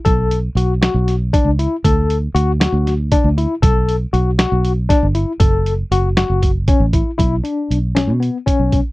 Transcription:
<<
  \new Staff \with { instrumentName = "Tine electric piano" } { \time 7/8 \key b \minor \tempo 4 = 118 a'4 fis'8 fis'4 d'8 e'8 | a'4 fis'8 fis'4 d'8 e'8 | a'4 fis'8 fis'4 d'8 e'8 | a'4 fis'8 fis'4 cis'8 e'8 |
e'8 d'4 cis'8 b8 cis'4 | }
  \new Staff \with { instrumentName = "Fingered electric bass" } { \clef bass \time 7/8 \key b \minor b,,4 b,,8. b,,4 cis,8 r16 | d,4 d,8. d,4 d,8 r16 | b,,4 b,,8. b,,4 g,,8 r16 | fis,,4 fis,,8. fis,,4 a,,8 r16 |
b,,8 r8 b,,8. b,8 r8 b,,8 r16 | }
  \new DrumStaff \with { instrumentName = "Drums" } \drummode { \time 7/8 <hh bd>8 hh8 hh8 <hh sn>8 <hh sn>8 <hh bd>8 hh8 | <hh bd>8 hh8 hh8 <hh sn>8 <hh sn>8 <hh bd>8 hh8 | <hh bd>8 hh8 hh8 <hh sn>8 hh8 <hh bd sn>8 hh8 | <hh bd>8 hh8 hh8 <hh sn>8 <hh bd>8 <hh bd>8 <hh bd>8 |
<hh bd>8 hh8 hh8 <hh sn>8 hh8 <hh bd>8 <hh bd>8 | }
>>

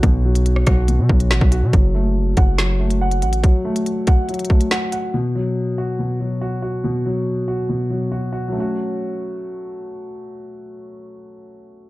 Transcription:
<<
  \new Staff \with { instrumentName = "Grand piano" } { \time 4/4 \key fis \minor \tempo 4 = 141 <b, fis fis'>8 fis4 fis'8 b,8 fis8 fis'8 fis'8 | fis8 a4 fis''8 fis8 a8 fis''8 fis''8 | fis8 a4 fis''8 fis8 a8 fis''8 fis''8 | b,8 fis4 fis'8 b,8 fis8 fis'8 fis'8 |
b,8 fis4 fis'8 b,8 fis8 fis'8 fis'8 | <fis a cis' fis'>1~ | <fis a cis' fis'>1 | }
  \new Staff \with { instrumentName = "808-style bass" } { \clef bass \time 4/4 \key fis \minor b,,4. b,,8. b,16 b,,8 a,,16 b,,8 b,16 | fis,,4. fis,,2 a,,8 | r1 | r1 |
r1 | r1 | r1 | }
  \new DrumStaff \with { instrumentName = "Drums" } \drummode { \time 4/4 <hh bd>8. hh16 hh16 ss16 <hh bd ss>8 hh8 bd16 hh16 sn16 bd16 hh8 | <hh bd>4 r8 <hh bd>8 sn8. hh16 r16 hh16 hh16 hh16 | <hh bd>8. hh16 hh8 <hh bd>8 hh32 hh32 hh32 hh32 bd16 hh16 sn8 hh8 | r4 r4 r4 r4 |
r4 r4 r4 r4 | r4 r4 r4 r4 | r4 r4 r4 r4 | }
>>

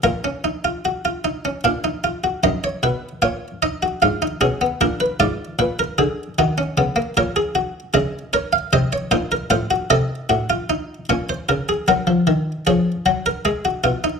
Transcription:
<<
  \new Staff \with { instrumentName = "Harpsichord" } { \time 3/4 \key bes \phrygian \tempo 4 = 76 << { bes'2 f''4 | ees''16 des''16 ces''8 des''8 ees''8 f''8 aes'8 | bes'16 ces''16 d''8 ces''16 bes'16 aes'8 ges'4 | des''4 ees''8 des''16 f''16 ees''16 des''16 c''16 bes'16 |
c''8 ees''4. des''16 c''16 bes'16 aes'16 | \key fis \major ais'4 cis''2 | } \\ { f'16 des'16 ees'16 f'16 ges'16 f'16 ees'16 des'16 d'16 ees'16 f'16 ges'16 | ees'4 f'8 ees'16 ges'16 f'16 ees'16 des'16 ces'16 | d'8 f'4. ees'16 des'16 ces'16 bes16 | bes'16 aes'16 ges'8 aes'8 bes'8 c''8 ees'8 |
f'16 ges'16 a'8 ges'16 f'16 ees'8 des'4 | fis'4 gis'8 fis'16 ais'16 gis'16 fis'16 eis'16 dis'16 | } >> }
  \new Staff \with { instrumentName = "Harpsichord" } { \clef bass \time 3/4 \key bes \phrygian bes,2 bes,4 | ges,8 ces8 bes,4 aes,8 ces8 | bes,8 aes,8 bes,8 d8 ees8 des8 | bes,4 des4 c8 bes,8 |
a,8 c8 a,4 bes,8 des8 | \key fis \major fis16 eis16 dis8 eis8 fis8 gis8 b,8 | }
>>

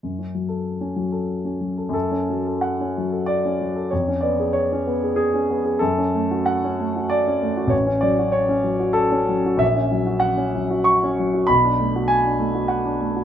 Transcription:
\new Staff \with { instrumentName = "Grand piano" } { \time 3/4 \key fis \minor \tempo 4 = 96 << { r2. | a'4 fis''4 d''4 | cis''8 d''8 cis''4 gis'4 | a'4 fis''4 d''4 |
cis''8 d''8 cis''4 a'4 | e''4 fis''4 cis'''4 | b''4 gis''4 fis''4 | } \\ { fis,16 cis'16 fis16 a'8 cis'16 fis16 a'8 cis'16 fis16 a'16 | fis,16 cis'16 fis16 a'8 cis'16 fis16 a'8 cis'16 fis16 a'16 | eis,16 cis'16 b16 gis'8 cis'16 b16 gis'8 cis'16 b16 gis'16 | fis,16 cis'16 a16 fis'8 cis'16 a16 fis'8 cis'16 a16 fis'16 |
a,,16 cis'16 fis16 fis'8 cis'16 fis16 fis'8 cis'16 fis16 fis'16 | ais,,16 cis'16 fis16 fis'8 cis'16 fis16 fis'8 cis'16 fis16 fis'16 | b,,16 d'16 a16 fis'8 d'16 a16 fis'8 d'16 a16 fis'16 | } >> }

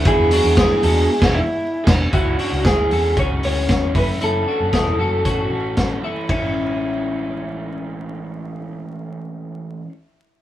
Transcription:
<<
  \new Staff \with { instrumentName = "Clean electric guitar" } { \time 4/4 \key a \major \tempo 4 = 115 gis'2~ gis'8 e'4 r8 | fis'4 gis'4 cis''8 cis''4 b'8 | a'2.~ a'8 r8 | e'1~ |
e'1 | }
  \new Staff \with { instrumentName = "Clean electric guitar" } { \time 4/4 \key a \major <b e'>8 <d' fis'>8 <e' gis'>8 <fis' a'>8 r2 | <cis' e'>8 <d' fis'>8 <e' gis'>8 <fis' a'>8 <cis' fis'>4. <cis' e'>8 | <cis' e'>8 <d' fis'>8 <e' gis'>8 <fis' a'>8 <cis' fis'>4. <cis' e'>8 | cis'2. r4 |
r1 | }
  \new Staff \with { instrumentName = "Overdriven electric guitar" } { \time 4/4 \key a \major <e b d' gis'>8 <b d' gis'>8 <e b d' gis'>8 <b d' gis'>8 r16 <e b d' gis'>8 r8. <b d' gis'>8 | <cis gis cis' e'>8 <gis cis' e'>8 <cis gis cis' e'>8 <gis cis' e'>8 <cis gis cis' e'>8 <gis cis' e'>8 <cis gis cis' e'>8 <e a cis'>8 | <fis, cis e a cis'>8 <e a cis'>8 <fis, cis e a cis'>8 <e a cis'>8 <cis e a cis'>8 <e a cis'>8 <fis, cis e a cis'>8 <e a cis'>8 | <a, e gis cis' e'>1~ |
<a, e gis cis' e'>1 | }
  \new Staff \with { instrumentName = "String machine" } { \time 4/4 \key a \major <d gis b e'>1 | r1 | r1 | r1 |
r1 | }
  \new Staff \with { instrumentName = "Picked electric bass" } { \clef bass \time 4/4 \key a \major e,8. e,8 r16 e,8 r16 e,,8 r8. e,,8 | cis,8 r16 cis,16 d,8 e,8 cis,8 d,8 e,8 fis,,8 | fis,,8 r16 fis,,16 e,,8 fis,,8 a,,8 a,,4 r8 | a,,1~ |
a,,1 | }
  \new DrumStaff \with { instrumentName = "Drums" } \drummode { \time 4/4 <hhp bd cymr>8 hho8 <hhp bd cymr sn>8 hho8 r16 <cymc bd sn>8. r8 <cymc bd sn>8 | <hh bd>8 hho8 <hh bd sn>8 hho8 <hh bd>8 hho8 <hh bd sn>8 <hho bd>8 | hh4 <hh bd sn>4 <hh bd>4 <hh bd sn>4 | <bd cymr>4 r4 r4 r4 |
r4 r4 r4 r4 | }
>>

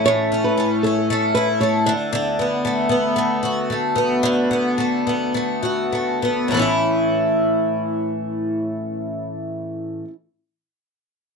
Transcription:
<<
  \new Staff \with { instrumentName = "Nylon-string guitar" } { \time 4/4 \key a \major \tempo 4 = 105 cis''8 r16 b'8 r16 a'16 r8. b'16 r16 cis''16 r16 d''16 r16 | r1 | r1 | r1 |
r1 | }
  \new Staff \with { instrumentName = "Twelve-string acoustic guitar" } { \time 4/4 \key a \major <a, a cis' e'>8 cis'8 a8 cis'8 a8 e'8 a8 d8 | d8 b8 a8 b8 a8 fis'8 a8 b8 | d8 b8 a8 b8 a8 fis'8 a8 b8 | <a, e a cis' e'>1~ |
<a, e a cis' e'>1 | }
>>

